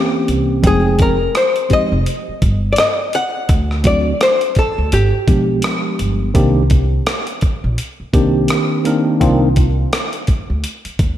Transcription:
Already playing: E3 A#3 C4 C#4 G4
0.28 C2, closed hi-hat
0.62 F1 F3 G#3 C4 D#4 G5, kick, closed hi-hat
0.67 G#4
0.99 A#4, kick, closed hi-hat
1.35 C5, cross-stick, closed hi-hat
1.56 closed hi-hat
1.69 F3 G#3 C4 D#4 G4, kick, closed hi-hat
1.73 D#5
1.92 F1
2.06 closed hi-hat
2.28 muted upright bass stroke
2.42 G1, kick, closed hi-hat
2.73 D5, closed hi-hat
2.78 D#5, cross-stick
3.13 F#5, closed hi-hat
3.49 D2, kick, closed hi-hat
3.71 cross-stick
3.84 F#3 A3 C4 D4 F#4 D5, kick, closed hi-hat
4.21 C5, cross-stick, closed hi-hat
4.41 closed hi-hat
4.55 A4, kick, closed hi-hat
4.78 D2
4.92 G1 G4, closed hi-hat
5.14 muted upright bass stroke
5.27 B1 F3 G#3 B3 D4 G4, kick, closed hi-hat
5.62 cross-stick, closed hi-hat
5.99 G1, closed hi-hat
6.34 C2 D#3 A#3 C4 D4 G4, kick, closed hi-hat
6.70 kick, closed hi-hat
7.07 cross-stick, closed hi-hat
7.27 closed hi-hat
7.41 kick, closed hi-hat
7.64 A#1
7.78 closed hi-hat
8.00 muted upright bass stroke
8.13 C2 D#3 A#3 C4 D4 G4, kick, closed hi-hat
8.48 cross-stick, closed hi-hat
8.85 D#3 A#3 C4 D4 A#4, closed hi-hat
9.21 C2 D#3 A#3 C4 D4 F4, kick, closed hi-hat
9.56 kick, closed hi-hat
9.93 cross-stick, closed hi-hat
10.13 closed hi-hat
10.27 kick, closed hi-hat
10.50 D2
10.64 closed hi-hat
10.85 muted upright bass stroke, closed hi-hat
10.99 D#2, kick, closed hi-hat

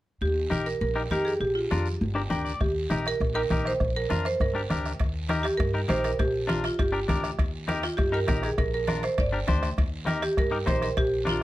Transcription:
0.21 D#2 G4, high conga, long guiro
0.50 A#1 D#4 G4 A#4, high conga, short guiro
0.66 A#4, short guiro
0.81 A#1 A#4, high conga, long guiro
0.95 D#4 G4 A#4
1.10 F2 D#4 G4 A#4, high conga, short guiro
1.25 G#4, short guiro
1.40 A#1 G4, high conga, long guiro
1.55 F4
1.71 F2 D4 F4 A#4, high conga, short guiro
1.86 short guiro
2.01 G1, high conga, long guiro
2.15 D4 G4 A#4
2.30 D2 D4 G4 A#4 G5, high conga, short guiro
2.45 D5, short guiro
2.61 D#2 G4, bombo low, bombo rim, high conga, long guiro
2.90 A#1 D#4 G4 A#4, bombo rim, high conga, short guiro
3.06 A#4, bombo rim, short guiro
3.20 A#1, bombo low, bombo rim, high conga, long guiro
3.35 D#4 G4 A#4
3.50 A#1 D#4 G4 A#4, bombo low, bombo rim, high conga, short guiro
3.65 C5, bombo rim, short guiro
3.80 A#1, bombo low, bombo rim, high conga, long guiro
3.96 A#4
4.10 F2 D4 F4 A#4, bombo rim, high conga, short guiro
4.25 C5, bombo rim, short guiro
4.40 G1 A#4, bombo low, bombo rim, high conga, long guiro
4.55 D4 G4 A#4
4.70 D2 D4 G4 A#4, bombo rim, high conga, short guiro
4.86 bombo rim, short guiro
5.00 D#2, bombo low, bombo rim, high conga, high timbale, long guiro
5.29 D#4 G4 A#4, bombo rim, high conga, high timbale, short guiro
5.43 G4, bombo rim, high timbale, short guiro
5.57 G2 A#4, bombo low, bombo rim, high conga, high timbale, long guiro
5.74 D#4 G4 A#4
5.88 A#1 D#4 G4 A#4 C5, bombo rim, high conga, high timbale, short guiro
6.04 A#4, bombo rim, high timbale, short guiro
6.19 A#1 G4, bombo low, bombo rim, high conga, high timbale, long guiro
6.47 D4 F4 A#4, bombo rim, high conga, high timbale, short guiro
6.64 F4, bombo rim, high timbale, short guiro
6.79 G1 G4, bombo low, bombo rim, high conga, high timbale, long guiro
6.92 D4 G4 A#4
7.08 D2 D4 G4 A#4, bombo low, bombo rim, high conga, high timbale, short guiro
7.24 bombo rim, high timbale, short guiro
7.39 D#2, bombo low, bombo rim, high conga, high timbale, long guiro
7.68 D#4 G4 A#4, bombo rim, high conga, high timbale, short guiro
7.83 F4, bombo rim, high timbale, short guiro
7.97 G2 G4, bombo low, bombo rim, high conga, high timbale, long guiro
8.12 D#4 G4 A#4
8.28 A#1 D#4 G4 A#4, bombo low, bombo rim, high conga, high timbale, low timbale, short guiro
8.43 G#4, bombo rim, high timbale, short guiro
8.58 A#1 A#4, bombo low, bombo rim, high conga, high timbale, long guiro
8.74 A#4
8.87 D4 F4 A#4, bombo rim, high conga, high timbale, short guiro
9.03 C5, bombo rim, high timbale, short guiro
9.18 G1 D5, bombo low, bombo rim, high conga, high timbale, long guiro
9.32 D4 G4 A#4
9.47 D2 D4 G4 C5, bombo low, bombo rim, high conga, high timbale, short guiro
9.63 bombo rim, high timbale, short guiro
9.77 D#2, bombo low, bombo rim, high conga, high timbale, long guiro
10.06 D#4 G4 A#4, bombo rim, high conga, high timbale, short guiro
10.22 G4, bombo rim, high timbale, short guiro
10.37 G2 A#4, bombo low, bombo rim, high conga, high timbale, long guiro
10.51 D#4 G4 A#4
10.66 A#1 D#4 G4 C5, bombo low, bombo rim, high conga, high timbale, low timbale, short guiro
10.82 A#4, bombo rim, high timbale, short guiro
10.97 A#1 G4, bombo low, bombo rim, high conga, high timbale, long guiro
11.25 D4 F4 A#4, bombo rim, high conga, high timbale, short guiro
11.29 F4

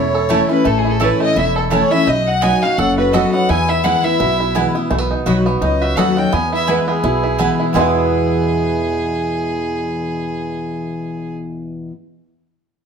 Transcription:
Already playing: E1 E2 A3 C#4 E4 A4 C#5
0.14 A4
0.29 E3 A3 C#4 E4 C#5 A5
0.49 C#4 E4 B4
0.65 A1 A2 A3 A4
0.78 G#4
0.85 E4
0.89 A4
1.00 E3 A3 C#4 E4 A4 B4 C#5 A5
1.20 A3 D#5
1.36 E1 E2 E4 E5
1.56 A4
1.70 E3 A3 C#4 E4 C#5 A5
1.91 C#4 E4 E5
2.06 B1 B2 D#4 D#5
2.27 F#5
2.41 F#3 B3 D#4 F#4 D#5 G#5 B5
2.62 D#4 F#4 F5
2.77 F#1 F#2 A4 F#5
2.97 F#4 B4
3.13 F#3 B3 D#4 F#4 A4 D#5 B5
3.32 B3 D#4 F#4 F#5
3.49 E2 E4 G#5
3.68 E4 E5
3.84 E3 G#3 B3 E4 B4 F#5 G#5
4.03 B3 E4 E5
4.20 B1 B2 E4
4.40 E4
4.55 E3 G#3 B3 E4 B4 G#5
4.75 B3 E4
4.90 B1 B2 A3
4.98 B3
5.11 D#4
5.26 B1 F#3 B3 D#4 F#4 D#5 B5
5.46 B3 D#4 F#4
5.61 C#2 F#2 D#4 D#5
5.82 F#4 E5
5.96 D#2 F#3 B3 D#4 F#4 A4 D#5 F#5 B5
6.17 D#4 F#4 G5
6.33 E2 B3 G#5
6.52 E4 E5
6.67 E3 G#3 B3 E4 B4 G#5
6.88 B3 G#4
7.03 B1 B2 E4
7.23 E4
7.39 E3 G#3 B3 E4 B4 G#5
7.60 E4
7.73 E2 B2 E3 G#3 B3 E4 G#4 B4 G#5
7.77 B3 E4
7.81 G#4

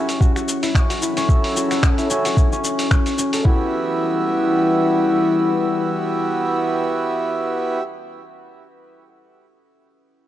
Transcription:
Already playing: F#3 C#4 E4 F#4 C#5 F#5
0.09 open hi-hat, cabasa
0.21 F#4, kick, cabasa
0.36 F#4 A4, finger snap, cabasa
0.48 cabasa
0.63 E4, open hi-hat, cabasa
0.75 C#4, finger snap, kick, cabasa
0.90 F#4, open hi-hat, cabasa
1.02 E4, cabasa
1.17 C#4, open hi-hat, cabasa
1.27 C#4 E4 F#4 A4, kick, cabasa
1.31 E5
1.44 open hi-hat
1.56 F#4, cabasa
1.71 F#4, finger snap, open hi-hat, cabasa
1.83 finger snap, kick, cabasa
1.98 E4, open hi-hat, cabasa
2.09 C#4 E4 F#4 A4 E5, cabasa
2.25 F#4, open hi-hat, cabasa
2.37 E4, kick, cabasa
2.52 C#4, cabasa
2.64 cabasa
2.79 open hi-hat, cabasa
2.91 C#5, finger snap, kick, cabasa
3.06 open hi-hat, cabasa
3.18 C#4, cabasa
3.33 A4, open hi-hat, cabasa
3.42 E3 B3 E4 F#4, kick
3.47 G4 E5
3.54 E4
3.63 G3
3.70 B4
3.78 F#5

